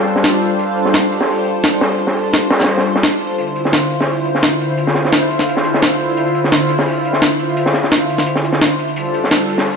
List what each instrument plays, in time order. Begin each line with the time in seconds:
Already playing: analog synth pad G3 D4 F4 A4 C5
0.07 closed hi-hat
0.16 snare
0.24 snare
0.33 closed hi-hat
0.41 closed hi-hat
0.50 closed hi-hat
0.59 closed hi-hat
0.76 closed hi-hat
0.85 snare
0.93 snare, closed hi-hat
1.12 closed hi-hat
1.21 snare
1.29 open hi-hat
1.46 closed hi-hat
1.64 snare, closed hi-hat
1.81 snare, closed hi-hat
1.98 closed hi-hat
2.07 snare
2.15 open hi-hat
2.33 snare, closed hi-hat
2.50 snare, closed hi-hat
2.60 snare, closed hi-hat
2.64 snare, closed hi-hat
2.68 closed hi-hat
2.78 snare
2.86 closed hi-hat
2.96 snare
3.03 snare, closed hi-hat
3.13 closed hi-hat
3.20 closed hi-hat
3.30 closed hi-hat
3.38 analog synth pad D3 E4 F4, closed hi-hat
3.47 closed hi-hat
3.56 closed hi-hat
3.65 snare
3.73 snare, closed hi-hat
3.90 closed hi-hat
4.01 snare
4.08 open hi-hat
4.25 closed hi-hat
4.35 snare
4.43 snare, closed hi-hat
4.61 closed hi-hat
4.70 closed hi-hat
4.77 closed hi-hat
4.87 snare
4.95 snare, closed hi-hat
5.05 snare
5.13 snare
5.30 closed hi-hat
5.39 snare
5.49 closed hi-hat
5.57 snare
5.65 closed hi-hat
5.74 snare
5.82 snare, closed hi-hat
5.91 closed hi-hat
5.99 closed hi-hat
6.09 closed hi-hat
6.17 closed hi-hat
6.27 closed hi-hat
6.34 closed hi-hat
6.44 snare
6.52 snare, closed hi-hat
6.69 closed hi-hat
6.79 snare
6.87 open hi-hat
7.05 closed hi-hat
7.13 snare
7.22 snare, closed hi-hat
7.39 closed hi-hat
7.49 closed hi-hat
7.57 closed hi-hat
7.66 snare
7.74 snare, closed hi-hat
7.84 snare
7.92 snare, closed hi-hat
8.09 closed hi-hat
8.17 snare, closed hi-hat
8.26 closed hi-hat
8.36 snare
8.44 closed hi-hat
8.53 snare
8.61 snare, closed hi-hat
8.70 closed hi-hat
8.79 closed hi-hat
8.88 closed hi-hat
8.96 analog synth pad G3 D4 F4 A4 C5, closed hi-hat
9.05 closed hi-hat
9.14 closed hi-hat
9.24 snare
9.31 snare, closed hi-hat
9.48 closed hi-hat
9.58 snare
9.66 open hi-hat